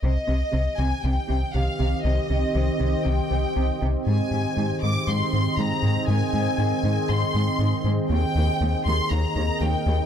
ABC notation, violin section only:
X:1
M:4/4
L:1/8
Q:1/4=119
K:Cm
V:1 name="Violin section"
e3 a g2 f2 | e4 g3 z | a3 d' c'2 b2 | a4 c'3 z |
g3 c' b2 g2 |]